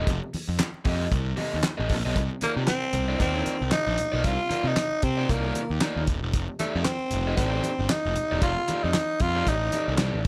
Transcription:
0.07 picked electric bass F1, kick, closed hi-hat, muted conga
0.23 muted conga
0.34 muted picked electric bass stroke, open hi-hat, high conga
0.48 picked electric bass F2
0.60 snare, clap, closed hi-hat, muted conga, high conga
0.74 muted conga
0.85 picked electric bass F2, overdriven electric guitar C4 G4 A4 D#5, kick, open hi-hat, low conga
1.12 picked electric bass C2, kick, closed hi-hat, muted conga, low conga
1.26 muted conga
1.37 overdriven electric guitar C4 G4 A4 D#5, open hi-hat, high conga
1.54 picked electric bass D#2
1.63 snare, clap, closed hi-hat, muted conga, high conga
1.78 picked electric bass A1, overdriven electric guitar C4 G4 A4 D#5, muted conga
1.89 picked electric bass A#1, kick, open hi-hat, low conga
2.05 picked electric bass B1, overdriven electric guitar C4 G4 A4 D#5
2.16 picked electric bass C2, kick, closed hi-hat
2.31 muted conga
2.41 tenor saxophone A#3, overdriven electric guitar D#4 F4 A#4 D5, muted picked electric bass stroke, closed hi-hat, high conga
2.56 picked electric bass C3
2.67 tenor saxophone C4, snare, clap, closed hi-hat, muted conga, high conga
2.83 muted conga
2.93 picked electric bass C2, closed hi-hat, low conga
3.08 overdriven electric guitar D#4 F4 A#4 D#5
3.20 picked electric bass D#2, tenor saxophone C4, overdriven electric guitar D#4 F4 A#4 D5, kick, closed hi-hat, muted conga, low conga
3.35 overdriven electric guitar D#4 F4 A#4 D5, muted conga
3.46 closed hi-hat, high conga
3.61 picked electric bass C2
3.72 tenor saxophone D#4, muted picked electric bass stroke, snare, clap, closed hi-hat, high conga
3.87 picked electric bass A#1, muted conga
3.98 closed hi-hat, low conga
4.12 picked electric bass B1, overdriven electric guitar D#4 F4 A#4 D5
4.24 picked electric bass C2, tenor saxophone F4, kick, closed hi-hat, muted conga
4.50 overdriven electric guitar D#4 F4 A#4 D5, muted picked electric bass stroke, closed hi-hat, high conga
4.64 picked electric bass C3, tenor saxophone D#4
4.76 snare, clap, closed hi-hat, muted conga, high conga
4.91 muted conga
5.02 picked electric bass C3, tenor saxophone C4, kick, closed hi-hat, low conga
5.17 overdriven electric guitar D#4 F4 A#4 D5
5.29 picked electric bass C2, tenor saxophone A#3, overdriven electric guitar D#4 F4 A#4 D5, kick, closed hi-hat, muted conga, low conga
5.44 overdriven electric guitar D#4 F4 A#4 D5, muted conga
5.55 closed hi-hat, high conga
5.70 picked electric bass D#2
5.80 overdriven electric guitar D#4 F4 A#4 D5, snare, clap, closed hi-hat, muted conga, high conga
5.96 picked electric bass D#2
6.07 picked electric bass D#1, kick, closed hi-hat, low conga
6.23 picked electric bass E1
6.32 picked electric bass F1, kick, closed hi-hat, muted conga
6.48 muted conga
6.59 tenor saxophone A3, overdriven electric guitar D#4 G4 A4 D5, muted picked electric bass stroke, closed hi-hat, high conga
6.75 picked electric bass F2
6.85 tenor saxophone C4, snare, clap, closed hi-hat, muted conga, high conga
6.99 muted conga
7.11 picked electric bass F1, closed hi-hat, low conga
7.27 overdriven electric guitar D#4 G4 A4 D#5
7.36 picked electric bass A1, tenor saxophone C4, overdriven electric guitar D#4 G4 A4 D5, kick, closed hi-hat, muted conga, low conga
7.53 overdriven electric guitar D#4 G4 A4 D5
7.64 closed hi-hat, high conga
7.79 picked electric bass G1
7.89 tenor saxophone D#4, muted picked electric bass stroke, snare, clap, closed hi-hat, muted conga, high conga
8.04 picked electric bass F1, muted conga
8.16 closed hi-hat, low conga
8.31 picked electric bass E1, overdriven electric guitar D#4 G4 A4 D5
8.41 picked electric bass F1, tenor saxophone F4, kick, closed hi-hat, muted conga
8.57 muted conga
8.68 overdriven electric guitar D#4 G4 A4 D5, muted picked electric bass stroke, closed hi-hat, high conga
8.83 picked electric bass F2, tenor saxophone D#4
8.94 snare, clap, closed hi-hat, high conga
9.20 picked electric bass F2, tenor saxophone F4, kick, closed hi-hat, low conga
9.36 overdriven electric guitar D#4 G4 A4 D5
9.46 picked electric bass A1, tenor saxophone D#4, kick, closed hi-hat, muted conga, low conga
9.72 overdriven electric guitar D#4 G4 A4 D5, closed hi-hat, high conga
9.88 picked electric bass C2
9.98 picked electric bass C2, overdriven electric guitar D#4 G4 A4 D5, snare, clap, closed hi-hat, muted conga, high conga
10.13 picked electric bass A1, muted conga

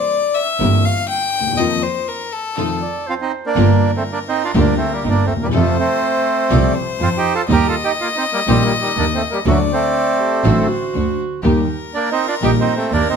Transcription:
Already playing: violin D5
0.35 violin E5
0.59 double bass G1, upright piano G1 G2 E3 A#3 C4 G4, string section C4 E4 A#4
0.85 violin F5
1.08 violin G5
1.40 upright piano D2
1.46 upright piano D#2
1.53 upright piano E2
1.57 upright piano F2 D#3 F3 A#3 C4 F4, string section D#4 F4 A#4, violin D#5
1.83 violin C5
2.08 violin A#4
2.33 violin A4
2.57 upright piano F2 D#3 F3 A3 C4 F4, string section D#4 F4 A4
2.82 clarinet D5
3.07 bandoneon C4 F4, clarinet C5
3.21 bandoneon C4 D#4
3.46 bandoneon A#3 D4
3.56 double bass G1, upright piano G1 G2 D3 G3 A#3 F4, string section A#3 F4 G4, violin A#4
3.97 bandoneon A3 C4
4.12 bandoneon A#3 D4
4.28 bandoneon C4 D#4
4.44 bandoneon D4 F4
4.54 double bass D2, upright piano D2 D3 G3 A#3 F4, string section A#3 F4 G4
4.60 bandoneon A#3 D4
4.77 bandoneon A3 C4
4.92 bandoneon G3 A#3
5.04 double bass G1, upright piano G1 G2, string section A#3 F4 G4, bandoneon D#4
5.10 bandoneon A#3 D4
5.26 double bass D#2, bandoneon A3 C4
5.35 upright piano D2
5.41 upright piano D#2, bandoneon G3 A#3
5.46 upright piano E2, violin B4
5.52 double bass F2, upright piano F2 C3 F3 A3 F4, bandoneon F3 A3, string section C4 F4 A4, violin C5
5.79 bandoneon A3 C4
6.50 double bass C2, upright piano C2 C3 F3 A3 F4, string section C4 F4 A4, violin D5
6.75 violin C5
7.00 double bass F2, upright piano F2 F3, string section C4 F4 A4, bandoneon C4 F4
7.17 bandoneon D#4 G4
7.35 bandoneon F4 A4
7.49 double bass D#2, upright piano D#2 D#3 G3 A#3 G4, string section A#3 D#4 G4, bandoneon A#4, violin D#5
7.53 bandoneon G4
7.68 bandoneon F4 A4
7.84 bandoneon D#4 G4
8.01 bandoneon A#3 F4
8.16 bandoneon C4 D#4
8.33 bandoneon G3 A#3
8.47 double bass A#1, upright piano A#1 A#2 D#3 G3 A#3 G4, bandoneon G3 C4, string section A#3 D#4 G4
8.64 bandoneon G3 A#3
8.81 bandoneon D#3 G3
8.96 double bass D#2, upright piano D#2 D#3, string section A#3 D#4 G4, bandoneon A#3 D4
9.15 bandoneon A3 C4
9.31 bandoneon G3 A#3
9.45 double bass D2, upright piano D2 D3 F#3 A3 F#4, bandoneon F#3 A3, string section A3 D4 F#4, violin D5
9.73 bandoneon A3 C4
10.20 clarinet G4
10.44 double bass A1, upright piano A1 A2 D3 F#3 A3 F#4, string section A3 D4 F#4, clarinet A4, violin C5
10.68 clarinet F#4
10.94 double bass D2, upright piano D2 D3, string section A3 D4 F#4
11.43 double bass D#2, upright piano D#2 D#3 G3 A#3 G4, string section A#3 D#4 G4, clarinet D#4, violin A#4
11.94 bandoneon A#3 D4
12.11 bandoneon C4 D#4
12.27 bandoneon D4 F4
12.42 double bass A#1, upright piano A#1 A#2 D#3 G3 A#3 G4, string section A#3 D#4 G4, bandoneon D#4 G4
12.60 bandoneon C4 D#4
12.76 bandoneon A3 C4
12.91 double bass D#2, upright piano D#2 D#3, string section A#3 D#4 G4, bandoneon A#3 D4, violin A#4
13.09 bandoneon C4 D#4

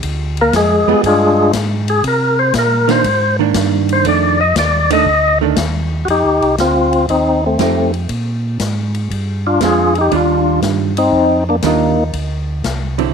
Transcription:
0.03 tonewheel organ D2, kick, ride
0.37 ride
0.41 tonewheel organ A#3 A#4
0.53 tonewheel organ F2 G#3 G#4, kick, snare, hi-hat pedal, ride
0.86 tonewheel organ F2, hollow-body jazz guitar G3 B3 F4 G#4
1.03 tonewheel organ G2 G#3 D4 F4 G#4, kick, ride
1.53 tonewheel organ G#2, kick, snare, hi-hat pedal, ride
1.88 tonewheel organ G#4, ride
2.04 tonewheel organ C3 A#4, kick, ride
2.39 tonewheel organ C5
2.54 tonewheel organ A#2, kick, snare, hi-hat pedal, ride
2.59 tonewheel organ A#4
2.88 hollow-body jazz guitar D#3 A#3 D4, tonewheel organ C5, snare, ride
3.04 tonewheel organ G#2, kick, ride
3.39 hollow-body jazz guitar D#3 A#3 D4
3.54 tonewheel organ G2, kick, snare, hi-hat pedal, ride
3.89 tonewheel organ C5, ride
4.05 tonewheel organ F2 D5, hollow-body jazz guitar D#3 A3 D4, kick, ride
4.41 tonewheel organ D#5
4.56 tonewheel organ D#2 D5, kick, snare, hi-hat pedal, ride
4.90 hollow-body jazz guitar D#3 A3 D4, tonewheel organ D#5, ride
5.06 tonewheel organ D2, kick
5.41 hollow-body jazz guitar D#3 A3 D4
5.56 tonewheel organ D#2, kick, snare, hi-hat pedal, ride
6.05 tonewheel organ F2 F#4, kick, ride
6.10 tonewheel organ D#4 G4
6.24 tonewheel organ D#2
6.41 tonewheel organ C2, ride
6.58 tonewheel organ D2 C4 F4, kick, snare, hi-hat pedal, ride
6.93 ride
7.08 tonewheel organ D#2 C4 D#4, kick, ride
7.46 tonewheel organ A3 C4
7.59 tonewheel organ F2, hollow-body jazz guitar F3 A3 D#4 G4, kick, snare, hi-hat pedal, ride
7.94 ride
8.09 tonewheel organ A#2, kick, ride
8.60 tonewheel organ G#2, kick, snare, hi-hat pedal, ride
8.94 ride
9.10 tonewheel organ G2, kick, ride
9.47 tonewheel organ D4 F4
9.61 tonewheel organ F2 F4 G#4, hollow-body jazz guitar G#3 C4 D4, kick, snare, hi-hat pedal, ride
9.95 tonewheel organ D#4, ride
10.01 tonewheel organ G4
10.11 tonewheel organ D#2 D4, hollow-body jazz guitar D#3 G3 D4 F4, kick, ride
10.16 tonewheel organ F4
10.62 tonewheel organ G2, kick, snare, hi-hat pedal, ride
10.97 tonewheel organ C4 D#4, ride
11.12 tonewheel organ F2, kick
11.49 tonewheel organ A#3 D4
11.62 tonewheel organ D#2 A#3, hollow-body jazz guitar D#3 G3 D4 F4, kick, snare, hi-hat pedal, ride
11.66 tonewheel organ D#4
12.13 tonewheel organ D2, kick, ride
12.64 tonewheel organ C2, kick, snare, hi-hat pedal, ride
12.98 hollow-body jazz guitar D3 F#3 C4 E4, ride

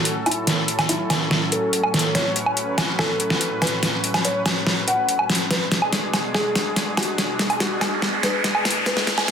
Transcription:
Already playing: supersaw synth A2 F#3 C#4 A4, felt piano F#4
0.05 closed hi-hat
0.26 felt piano E4, closed hi-hat, low woodblock
0.31 closed hi-hat
0.47 snare, closed hi-hat
0.68 closed hi-hat
0.79 snare, closed hi-hat, low woodblock
0.89 felt piano E4, closed hi-hat
1.10 snare, closed hi-hat, low woodblock
1.31 snare
1.52 felt piano A4, closed hi-hat
1.73 closed hi-hat
1.83 low woodblock
1.94 snare, closed hi-hat
1.99 closed hi-hat
2.15 supersaw synth B4, felt piano C#5, snare, closed hi-hat
2.36 closed hi-hat
2.46 low woodblock
2.57 closed hi-hat
2.78 snare, closed hi-hat, low woodblock
2.99 felt piano A4, snare, low woodblock
3.20 closed hi-hat
3.30 snare
3.41 closed hi-hat
3.62 felt piano B4, snare, closed hi-hat, low woodblock
3.67 closed hi-hat
3.83 snare, closed hi-hat
4.04 closed hi-hat
4.14 snare, closed hi-hat, low woodblock
4.25 felt piano C#5, closed hi-hat
4.46 snare, closed hi-hat, low woodblock
4.67 snare
4.88 felt piano F#5, closed hi-hat
5.09 closed hi-hat
5.19 low woodblock
5.30 snare, closed hi-hat
5.35 closed hi-hat
5.51 supersaw synth B2 G#3 D4 G#4, felt piano B4, snare, closed hi-hat, riser
5.72 snare, closed hi-hat
5.82 low woodblock
5.93 snare, closed hi-hat
6.14 snare, closed hi-hat, low woodblock
6.35 felt piano G#4, snare, low woodblock
6.55 snare, closed hi-hat
6.76 snare, closed hi-hat
6.97 felt piano F#4, snare, closed hi-hat, low woodblock
7.03 closed hi-hat
7.18 snare, closed hi-hat
7.39 snare, closed hi-hat
7.50 closed hi-hat, low woodblock
7.60 felt piano F#4, snare, closed hi-hat
7.81 snare, closed hi-hat, low woodblock
8.02 snare
8.23 felt piano B4, snare, closed hi-hat
8.44 snare, closed hi-hat
8.55 low woodblock
8.65 snare, closed hi-hat
8.70 closed hi-hat
8.86 felt piano B4, snare, closed hi-hat
8.97 snare
9.07 snare, closed hi-hat
9.18 snare, low woodblock

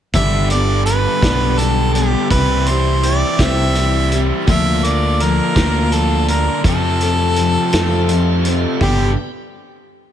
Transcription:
0.14 fingered electric bass G1, twelve-string acoustic guitar G2 D3 G3 B3 D4 G4, harmonica E5, kick, closed hi-hat
0.50 twelve-string acoustic guitar B3 D4 G4, harmonica D5, closed hi-hat
0.55 twelve-string acoustic guitar G3
0.86 twelve-string acoustic guitar G3 B3 D4 G4, harmonica B4, closed hi-hat
1.22 fingered electric bass B1, twelve-string acoustic guitar G2 D3 G3 B3 D4 G4, kick, snare, closed hi-hat
1.58 twelve-string acoustic guitar G3 B3 D4 G4, harmonica A4, closed hi-hat
1.94 twelve-string acoustic guitar G3 B3 D4 G4, harmonica G4, closed hi-hat
2.30 fingered electric bass C2, twelve-string acoustic guitar C3 G3 C4 E4 G4, overdriven electric guitar E3, harmonica B4, kick, closed hi-hat
2.66 twelve-string acoustic guitar E4 G4, harmonica C5, closed hi-hat
2.71 twelve-string acoustic guitar C4
3.03 twelve-string acoustic guitar G3 C4 E4 G4, harmonica D5, closed hi-hat
3.38 fingered electric bass C2, twelve-string acoustic guitar C3 G3 C4 E4 G4, overdriven electric guitar E3, harmonica E5, kick, snare, closed hi-hat
3.75 twelve-string acoustic guitar G3 C4 E4, closed hi-hat
3.79 twelve-string acoustic guitar G4
4.12 twelve-string acoustic guitar C4 E4 G4, closed hi-hat
4.47 fingered electric bass D2, twelve-string acoustic guitar D3 F3 A#3 D4 A#4, tonewheel organ A#3 D4 F4, overdriven electric guitar F4, harmonica E5, kick, closed hi-hat
4.83 twelve-string acoustic guitar A#3 D4 A#4, harmonica D5, closed hi-hat
5.20 twelve-string acoustic guitar F3 A#3 D4 A#4, harmonica A#4, closed hi-hat
5.55 fingered electric bass D2, twelve-string acoustic guitar D3 F3 A#3 D4 A#4, overdriven electric guitar F4, kick, snare, closed hi-hat
5.92 twelve-string acoustic guitar F3 A#3 D4, harmonica A4, closed hi-hat
6.28 twelve-string acoustic guitar A#3 D4 A#4, harmonica A#4, closed hi-hat
6.64 fingered electric bass F2, overdriven electric guitar F2 C3 A3, twelve-string acoustic guitar F3 C4 F4 A4, tonewheel organ A3 C4 F4, kick, closed hi-hat
6.68 harmonica A4
7.01 twelve-string acoustic guitar C4 F4 A4, closed hi-hat
7.36 twelve-string acoustic guitar F3 C4 F4, closed hi-hat
7.41 twelve-string acoustic guitar A4
7.73 fingered electric bass F2, overdriven electric guitar F2 C3 A3, twelve-string acoustic guitar F3 C4 F4 A4, snare, closed hi-hat
8.08 twelve-string acoustic guitar F3 C4 F4 A4, closed hi-hat
8.44 twelve-string acoustic guitar C4 F4 A4, closed hi-hat
8.81 fingered electric bass G1, twelve-string acoustic guitar G2 D3 G3 B3 D4 G4, tonewheel organ B3 D4 G4, harmonica G4, kick

